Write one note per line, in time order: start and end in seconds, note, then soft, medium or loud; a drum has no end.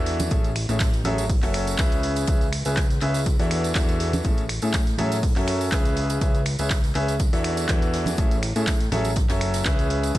0.00 0.29 E2 loud
0.00 0.29 E3 medium
0.00 0.29 D4 medium
0.00 0.29 F#4 medium
0.00 0.29 A4 medium
0.00 0.29 E5 loud
0.06 snare medium
0.06 open hi-hat medium
0.06 ride medium
0.20 closed hi-hat soft
0.20 ride soft
0.20 tambourine medium
0.20 high conga medium
0.31 0.66 A1 loud
0.31 0.49 A2 medium
0.31 0.49 C#4 medium
0.31 0.49 G#4 medium
0.31 0.49 A4 medium
0.31 0.49 E5 medium
0.31 kick loud
0.31 closed hi-hat medium
0.31 ride medium
0.31 tambourine medium
0.44 closed hi-hat soft
0.44 tambourine soft
0.55 finger snap medium
0.55 open hi-hat loud
0.55 ride medium
0.69 1.03 A1 loud
0.69 0.85 A2 medium
0.69 0.85 C#4 medium
0.69 0.85 G#4 medium
0.69 0.85 A4 medium
0.69 0.85 E5 medium
0.69 closed hi-hat soft
0.69 tambourine medium
0.80 kick loud
0.80 snare loud
0.80 clap loud
0.80 closed hi-hat medium
0.80 ride loud
0.80 tambourine medium
0.94 snare soft
0.94 closed hi-hat soft
0.94 tambourine soft
1.04 1.40 A1 medium
1.04 1.22 F#3 medium
1.04 1.22 C#4 medium
1.04 1.22 G#4 medium
1.04 1.22 A4 medium
1.04 1.22 E5 loud
1.04 open hi-hat medium
1.04 ride medium
1.04 high conga medium
1.18 snare soft
1.18 closed hi-hat soft
1.18 tambourine medium
1.30 kick loud
1.30 closed hi-hat medium
1.30 open hi-hat medium
1.30 tambourine medium
1.41 1.76 F#1 loud
1.41 1.76 F#3 medium
1.41 1.76 C#4 medium
1.41 1.76 F#4 medium
1.41 1.76 A4 medium
1.41 1.76 E5 medium
1.41 snare soft
1.41 clap soft
1.41 closed hi-hat soft
1.41 tambourine soft
1.54 finger snap medium
1.54 open hi-hat loud
1.54 ride medium
1.67 closed hi-hat soft
1.67 tambourine medium
1.78 2.26 C#2 loud
1.78 2.25 C#3 medium
1.78 2.25 C#4 medium
1.78 2.25 G#4 medium
1.78 2.25 B4 medium
1.78 2.25 E5 loud
1.78 kick loud
1.78 snare loud
1.78 clap loud
1.78 closed hi-hat medium
1.78 ride medium
1.78 tambourine medium
1.92 closed hi-hat soft
1.92 tambourine soft
2.03 open hi-hat loud
2.03 ride medium
2.16 closed hi-hat soft
2.16 ride soft
2.16 tambourine medium
2.27 2.63 C#2 loud
2.27 2.45 C#4 medium
2.27 2.45 G#4 medium
2.27 2.45 B4 medium
2.27 2.45 E5 medium
2.27 kick loud
2.27 closed hi-hat medium
2.27 ride medium
2.27 tambourine medium
2.41 closed hi-hat soft
2.41 tambourine soft
2.53 finger snap medium
2.53 open hi-hat loud
2.53 ride medium
2.65 2.99 C#2 loud
2.65 2.82 C#3 medium
2.65 2.82 C#4 medium
2.65 2.82 G#4 medium
2.65 2.82 B4 medium
2.65 2.82 E5 medium
2.65 closed hi-hat soft
2.65 tambourine medium
2.77 kick loud
2.77 snare loud
2.77 clap loud
2.77 closed hi-hat medium
2.77 ride medium
2.77 tambourine medium
2.90 snare soft
2.90 closed hi-hat soft
2.90 tambourine soft
3.01 3.37 C#2 loud
3.01 3.19 C#4 medium
3.01 3.19 G#4 medium
3.01 3.19 B4 medium
3.01 3.19 E5 loud
3.01 clap soft
3.01 open hi-hat medium
3.01 ride medium
3.14 snare soft
3.14 closed hi-hat soft
3.14 tambourine medium
3.26 kick loud
3.26 closed hi-hat medium
3.26 ride medium
3.26 tambourine medium
3.39 3.73 E2 medium
3.39 3.73 E3 medium
3.39 3.73 D4 medium
3.39 3.73 F#4 medium
3.39 3.73 A4 medium
3.39 3.73 E5 medium
3.39 snare soft
3.39 closed hi-hat soft
3.39 tambourine soft
3.51 finger snap medium
3.51 open hi-hat loud
3.51 ride medium
3.64 closed hi-hat soft
3.64 tambourine medium
3.75 4.22 E2 loud
3.75 4.22 E3 medium
3.75 4.22 D4 medium
3.75 4.22 F#4 medium
3.75 4.22 A4 medium
3.75 4.22 E5 loud
3.75 kick loud
3.75 snare loud
3.75 clap loud
3.75 closed hi-hat medium
3.75 ride medium
3.75 tambourine medium
3.88 closed hi-hat soft
3.88 tambourine soft
4.00 snare medium
4.00 open hi-hat loud
4.00 ride medium
4.13 closed hi-hat soft
4.13 ride soft
4.13 tambourine medium
4.13 high conga medium
4.25 4.60 A1 medium
4.25 4.42 A2 medium
4.25 4.42 C#4 medium
4.25 4.42 G#4 medium
4.25 4.42 A4 medium
4.25 4.42 E5 medium
4.25 kick loud
4.25 closed hi-hat medium
4.25 ride medium
4.25 tambourine medium
4.37 closed hi-hat soft
4.37 tambourine soft
4.49 finger snap medium
4.49 open hi-hat loud
4.49 ride medium
4.62 4.96 A2 loud
4.62 4.79 A2 medium
4.62 4.79 C#4 medium
4.62 4.79 G#4 medium
4.62 4.79 A4 medium
4.62 4.79 E5 medium
4.62 closed hi-hat soft
4.62 tambourine medium
4.73 kick loud
4.73 snare loud
4.73 clap loud
4.73 closed hi-hat medium
4.73 ride medium
4.73 tambourine medium
4.87 snare soft
4.87 closed hi-hat soft
4.87 tambourine soft
4.98 5.34 A2 medium
4.98 5.16 F#3 medium
4.98 5.16 C#4 medium
4.98 5.16 G#4 medium
4.98 5.16 A4 medium
4.98 5.16 E5 loud
4.98 open hi-hat medium
4.98 ride medium
4.98 high conga medium
5.11 snare soft
5.11 closed hi-hat soft
5.11 tambourine medium
5.23 kick loud
5.23 closed hi-hat medium
5.23 open hi-hat medium
5.23 tambourine medium
5.36 5.70 F#2 medium
5.36 5.69 F#3 medium
5.36 5.70 C#4 medium
5.36 5.70 F#4 medium
5.36 5.70 A4 medium
5.36 5.70 E5 medium
5.36 snare soft
5.36 clap soft
5.36 closed hi-hat soft
5.36 tambourine soft
5.48 finger snap medium
5.48 open hi-hat loud
5.48 ride medium
5.61 closed hi-hat soft
5.61 tambourine medium
5.72 6.19 C#2 loud
5.72 6.19 C#3 medium
5.72 6.19 C#4 medium
5.72 6.19 G#4 medium
5.72 6.19 B4 medium
5.72 6.19 E5 loud
5.72 kick loud
5.72 snare loud
5.72 clap loud
5.72 closed hi-hat medium
5.72 ride medium
5.72 tambourine medium
5.85 closed hi-hat soft
5.85 tambourine soft
5.96 open hi-hat medium
5.96 ride medium
6.10 closed hi-hat soft
6.10 ride soft
6.10 tambourine medium
6.21 6.57 C#2 loud
6.21 6.39 C#3 medium
6.21 6.39 C#4 medium
6.21 6.39 G#4 medium
6.21 6.39 B4 medium
6.21 6.39 E5 medium
6.21 kick loud
6.21 closed hi-hat medium
6.21 ride medium
6.21 tambourine medium
6.34 closed hi-hat soft
6.34 tambourine soft
6.46 finger snap medium
6.46 open hi-hat loud
6.46 ride medium
6.59 6.93 C#2 loud
6.59 6.75 C#3 medium
6.59 6.75 C#4 medium
6.59 6.75 G#4 medium
6.59 6.75 B4 medium
6.59 6.75 E5 medium
6.59 closed hi-hat soft
6.59 tambourine medium
6.70 kick loud
6.70 snare loud
6.70 clap loud
6.70 closed hi-hat medium
6.70 ride medium
6.70 tambourine medium
6.84 snare soft
6.84 closed hi-hat soft
6.84 tambourine soft
6.95 7.30 C#2 medium
6.95 7.13 C#4 medium
6.95 7.13 G#4 medium
6.95 7.13 B4 medium
6.95 7.13 E5 loud
6.95 clap soft
6.95 open hi-hat medium
6.95 ride medium
7.08 snare soft
7.08 closed hi-hat soft
7.08 tambourine medium
7.19 kick loud
7.19 closed hi-hat medium
7.19 ride medium
7.19 tambourine medium
7.33 7.67 E2 medium
7.33 7.66 E3 medium
7.33 7.66 D4 medium
7.33 7.66 F#4 medium
7.33 7.66 A4 medium
7.33 7.66 E5 medium
7.33 snare medium
7.33 closed hi-hat soft
7.33 tambourine soft
7.44 finger snap medium
7.44 open hi-hat loud
7.44 ride medium
7.57 closed hi-hat soft
7.57 tambourine medium
7.68 8.16 E2 loud
7.68 8.15 E3 loud
7.68 8.15 D4 medium
7.68 8.15 F#4 medium
7.68 8.15 A4 medium
7.68 8.15 E5 loud
7.68 kick loud
7.68 snare loud
7.68 clap loud
7.68 closed hi-hat medium
7.68 ride medium
7.68 tambourine medium
7.82 closed hi-hat soft
7.82 tambourine soft
7.94 snare medium
7.94 open hi-hat medium
7.94 ride medium
8.06 closed hi-hat soft
8.06 ride soft
8.06 tambourine medium
8.06 high conga medium
8.18 8.53 A1 loud
8.18 8.36 A2 medium
8.18 8.36 C#4 medium
8.18 8.35 G#4 medium
8.18 8.35 A4 medium
8.18 8.36 E5 medium
8.18 kick loud
8.18 closed hi-hat medium
8.18 ride loud
8.18 tambourine medium
8.31 closed hi-hat soft
8.31 tambourine soft
8.43 finger snap medium
8.43 open hi-hat loud
8.43 ride medium
8.56 8.90 A2 loud
8.56 8.72 A2 medium
8.56 8.72 C#4 medium
8.56 8.72 G#4 medium
8.56 8.72 A4 medium
8.56 8.72 E5 medium
8.56 closed hi-hat soft
8.56 tambourine medium
8.67 kick loud
8.67 snare loud
8.67 clap loud
8.67 closed hi-hat medium
8.67 ride medium
8.67 tambourine medium
8.80 snare soft
8.80 closed hi-hat soft
8.80 tambourine soft
8.92 9.27 A1 medium
8.92 9.09 F#3 medium
8.92 9.09 C#4 medium
8.92 9.09 G#4 medium
8.92 9.09 A4 medium
8.92 9.09 E5 loud
8.92 snare loud
8.92 open hi-hat medium
8.92 ride medium
8.92 high conga medium
9.05 closed hi-hat soft
9.05 tambourine medium
9.16 kick loud
9.16 snare medium
9.16 closed hi-hat medium
9.16 ride medium
9.16 tambourine medium
9.29 9.63 F#1 loud
9.29 9.63 F#3 medium
9.29 9.63 C#4 medium
9.29 9.63 F#4 medium
9.29 9.63 A4 medium
9.29 9.63 E5 medium
9.29 snare loud
9.29 clap soft
9.29 closed hi-hat soft
9.29 ride medium
9.29 tambourine soft
9.41 finger snap medium
9.41 open hi-hat loud
9.54 snare soft
9.54 closed hi-hat soft
9.54 ride medium
9.54 tambourine medium
9.65 10.13 C#2 loud
9.65 10.12 C#3 medium
9.65 10.12 C#4 medium
9.65 10.12 G#4 medium
9.65 10.12 B4 medium
9.65 10.12 E5 loud
9.65 kick loud
9.65 snare loud
9.65 clap loud
9.65 closed hi-hat medium
9.65 ride medium
9.65 tambourine medium
9.79 closed hi-hat soft
9.79 tambourine soft
9.90 open hi-hat medium
9.90 ride medium
10.03 closed hi-hat soft
10.03 ride soft
10.03 tambourine medium
10.15 10.18 C#2 loud
10.15 10.18 C#4 medium
10.15 10.18 G#4 medium
10.15 10.18 B4 medium
10.15 10.18 E5 medium
10.15 kick loud
10.15 closed hi-hat medium
10.15 ride medium
10.15 tambourine medium